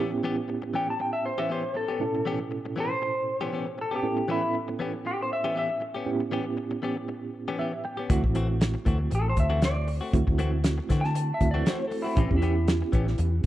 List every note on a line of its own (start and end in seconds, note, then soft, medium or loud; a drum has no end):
0.00 1.96 A2 medium
0.00 0.11 E3 medium
0.00 0.11 B3 medium
0.00 1.96 B3 medium
0.00 0.11 C#4 medium
0.00 1.96 C#4 medium
0.00 1.96 E4 medium
0.00 1.96 G4 medium
0.11 muted clean electric guitar stroke soft
0.23 0.37 E3 medium
0.23 0.37 B3 medium
0.23 0.37 C#4 medium
0.23 0.36 G4 loud
0.37 muted clean electric guitar stroke soft
0.48 muted clean electric guitar stroke soft
0.62 muted clean electric guitar stroke soft
0.74 0.87 E3 medium
0.74 0.88 B3 soft
0.74 0.88 C#4 medium
0.74 0.87 G4 medium
0.74 0.88 G5 medium
0.88 1.00 A5 medium
0.88 muted clean electric guitar stroke soft
1.00 1.12 G5 medium
1.00 muted clean electric guitar stroke soft
1.13 1.24 E5 medium
1.26 1.38 C5 medium
1.38 1.48 E3 medium
1.38 1.49 B3 soft
1.38 1.50 C#4 medium
1.38 1.50 G4 medium
1.38 1.50 E5 medium
1.49 1.63 E3 medium
1.49 1.64 B3 medium
1.49 1.63 C#4 medium
1.49 1.63 G4 medium
1.49 1.75 C5 medium
1.64 muted clean electric guitar stroke soft
1.74 2.25 A4 medium
1.74 muted clean electric guitar stroke soft
1.88 2.04 B3 soft
1.88 2.03 C#4 soft
1.88 2.03 G4 soft
2.00 3.99 A2 medium
2.00 4.00 B2 soft
2.00 4.00 C#4 medium
2.00 4.00 E4 soft
2.00 4.00 A4 medium
2.15 muted clean electric guitar stroke soft
2.25 2.40 E3 medium
2.25 2.40 B3 medium
2.25 2.39 C#4 medium
2.25 2.39 G4 loud
2.40 muted clean electric guitar stroke soft
2.51 muted clean electric guitar stroke soft
2.66 muted clean electric guitar stroke soft
2.76 2.90 E3 medium
2.76 2.90 B3 medium
2.76 2.90 C#4 medium
2.76 2.89 G4 medium
2.80 3.77 C5 medium
2.90 muted clean electric guitar stroke soft
3.02 muted clean electric guitar stroke soft
3.41 3.51 E3 medium
3.41 3.52 B3 medium
3.41 3.53 C#4 medium
3.41 3.53 G4 medium
3.52 3.67 E3 medium
3.52 3.67 B3 medium
3.52 3.66 C#4 medium
3.52 3.65 G4 medium
3.67 muted clean electric guitar stroke soft
3.78 3.93 A4 medium
3.78 muted clean electric guitar stroke soft
3.91 4.07 B3 soft
3.91 4.07 C#4 soft
3.91 4.06 G4 soft
3.96 4.30 G4 medium
4.03 6.02 A2 medium
4.03 6.03 B3 medium
4.03 6.03 C#4 medium
4.03 6.03 E4 medium
4.03 6.03 A4 medium
4.17 muted clean electric guitar stroke soft
4.28 4.43 E3 medium
4.28 4.42 B3 medium
4.28 4.42 C#4 medium
4.28 4.55 E4 medium
4.28 4.41 G4 medium
4.42 muted clean electric guitar stroke soft
4.54 muted clean electric guitar stroke soft
4.68 muted clean electric guitar stroke soft
4.79 4.93 E3 medium
4.79 4.93 B3 medium
4.79 4.93 C#4 medium
4.79 4.92 G4 medium
4.93 muted clean electric guitar stroke soft
5.05 5.20 G4 medium
5.05 muted clean electric guitar stroke soft
5.22 5.32 C5 medium
5.33 5.56 E5 medium
5.44 5.53 E3 medium
5.44 5.54 B3 medium
5.44 5.55 C#4 medium
5.44 5.56 G4 medium
5.54 5.69 E3 medium
5.54 5.69 B3 soft
5.54 5.69 C#4 medium
5.54 5.68 G4 medium
5.59 5.82 E5 medium
5.69 muted clean electric guitar stroke soft
5.80 muted clean electric guitar stroke soft
5.94 6.10 B3 soft
5.94 6.10 C#4 medium
5.94 6.09 G4 medium
6.06 8.06 A2 medium
6.06 8.06 B3 medium
6.06 8.06 C#4 medium
6.06 8.06 E4 medium
6.06 8.06 G4 medium
6.20 muted clean electric guitar stroke soft
6.31 6.46 E3 medium
6.31 6.46 B3 medium
6.31 6.45 C#4 medium
6.31 6.44 G4 loud
6.46 muted clean electric guitar stroke soft
6.57 muted clean electric guitar stroke soft
6.71 muted clean electric guitar stroke soft
6.82 6.97 E3 soft
6.82 6.97 B3 medium
6.82 6.96 C#4 medium
6.82 6.96 G4 medium
6.97 muted clean electric guitar stroke soft
7.08 muted clean electric guitar stroke soft
7.48 7.57 E3 medium
7.48 7.58 B3 medium
7.48 7.59 C#4 medium
7.48 7.59 G4 medium
7.58 7.73 E3 medium
7.58 7.73 B3 medium
7.58 7.72 C#4 medium
7.58 7.72 G4 medium
7.58 7.83 E5 medium
7.73 muted clean electric guitar stroke soft
7.84 8.08 G5 medium
7.84 muted clean electric guitar stroke soft
7.97 8.10 B3 soft
7.97 8.10 C#4 soft
7.97 8.09 G4 medium
8.09 8.21 D2 medium
8.09 8.24 E3 medium
8.09 10.09 A3 medium
8.09 8.24 A3 medium
8.09 10.09 C4 medium
8.09 8.23 C4 medium
8.09 10.09 E4 medium
8.09 10.10 F#4 medium
8.09 8.23 F#4 medium
8.09 kick loud
8.09 closed hi-hat medium
8.24 8.74 A1 loud
8.24 muted clean electric guitar stroke soft
8.24 kick medium
8.35 8.49 E3 medium
8.35 8.49 A3 medium
8.35 8.48 C4 loud
8.35 8.47 F#4 medium
8.35 closed hi-hat medium
8.49 muted clean electric guitar stroke soft
8.60 muted clean electric guitar stroke soft
8.60 snare loud
8.60 closed hi-hat medium
8.74 muted clean electric guitar stroke soft
8.85 9.07 D2 medium
8.85 9.00 E3 soft
8.85 9.00 A3 medium
8.85 8.99 C4 medium
8.85 8.98 F#4 medium
8.85 kick medium
8.85 closed hi-hat medium
8.99 muted clean electric guitar stroke soft
9.11 9.33 A1 medium
9.11 muted clean electric guitar stroke soft
9.11 closed hi-hat medium
9.15 9.27 A4 medium
9.29 9.39 C5 medium
9.37 9.99 D2 medium
9.37 9.63 E5 medium
9.37 kick medium
9.37 closed hi-hat medium
9.50 9.60 E3 medium
9.50 9.61 A3 medium
9.50 9.62 C4 medium
9.50 9.62 F#4 medium
9.61 9.76 E3 medium
9.61 9.76 A3 medium
9.61 9.75 C4 medium
9.61 9.75 F#4 medium
9.61 9.89 D5 medium
9.61 snare medium
9.61 closed hi-hat medium
9.76 muted clean electric guitar stroke soft
9.87 muted clean electric guitar stroke soft
9.87 open hi-hat medium
10.01 10.17 A3 soft
10.01 10.16 C4 soft
10.01 10.16 F#4 medium
10.13 10.25 D2 medium
10.13 11.38 A3 medium
10.13 11.38 C4 medium
10.13 11.38 E4 medium
10.13 11.38 F#4 medium
10.13 kick loud
10.13 closed hi-hat medium
10.27 10.78 D2 medium
10.27 muted clean electric guitar stroke soft
10.27 kick medium
10.38 10.53 E3 medium
10.38 10.53 A3 medium
10.38 10.52 C4 medium
10.38 10.51 F#4 medium
10.38 closed hi-hat medium
10.53 muted clean electric guitar stroke soft
10.64 muted clean electric guitar stroke soft
10.64 snare loud
10.64 closed hi-hat medium
10.78 muted clean electric guitar stroke soft
10.89 11.31 D3 medium
10.89 11.04 E3 soft
10.89 11.04 A3 medium
10.89 11.03 C4 medium
10.89 11.03 F#4 medium
10.89 kick medium
10.89 snare soft
10.89 closed hi-hat medium
11.01 11.33 A5 medium
11.01 muted clean electric guitar stroke soft
11.01 snare soft
11.15 muted clean electric guitar stroke soft
11.15 closed hi-hat medium
11.34 11.50 E5 medium
11.40 11.61 D2 medium
11.40 12.17 A3 soft
11.40 12.17 C4 soft
11.40 12.16 E4 soft
11.40 12.17 F#4 medium
11.40 kick medium
11.40 closed hi-hat medium
11.51 11.66 C4 medium
11.51 11.66 F#4 medium
11.51 11.67 D5 medium
11.55 11.64 E3 medium
11.55 11.65 A3 medium
11.65 11.80 E3 medium
11.65 11.80 A3 medium
11.65 11.79 C4 medium
11.65 11.78 F#4 medium
11.65 11.84 C5 medium
11.65 snare loud
11.65 closed hi-hat medium
11.80 muted clean electric guitar stroke soft
11.88 12.02 A4 medium
11.88 muted clean electric guitar stroke soft
11.88 open hi-hat medium
12.02 12.17 C4 soft
12.02 12.18 E4 medium
12.02 12.16 F#4 soft
12.07 12.16 A3 soft
12.16 12.28 A1 medium
12.16 12.31 E3 medium
12.16 13.46 B3 medium
12.16 12.31 B3 medium
12.16 12.35 C4 medium
12.16 13.46 C#4 medium
12.16 12.30 C#4 medium
12.16 13.46 E4 medium
12.16 12.30 G4 medium
12.16 13.46 G4 medium
12.16 kick loud
12.16 closed hi-hat medium
12.31 12.81 E2 medium
12.31 muted clean electric guitar stroke soft
12.31 kick medium
12.38 12.56 E3 medium
12.38 13.35 E4 medium
12.42 12.56 B3 medium
12.42 12.55 C#4 medium
12.42 12.55 G4 medium
12.42 closed hi-hat soft
12.56 muted clean electric guitar stroke soft
12.68 muted clean electric guitar stroke soft
12.68 snare loud
12.68 closed hi-hat medium
12.82 muted clean electric guitar stroke soft
12.92 13.14 A1 medium
12.92 13.07 E3 medium
12.92 13.07 B3 medium
12.92 13.06 C#4 medium
12.92 13.06 G4 medium
12.92 kick medium
12.92 closed hi-hat medium
13.07 muted clean electric guitar stroke soft
13.07 snare soft
13.18 13.39 E2 medium
13.18 muted clean electric guitar stroke soft
13.18 closed hi-hat medium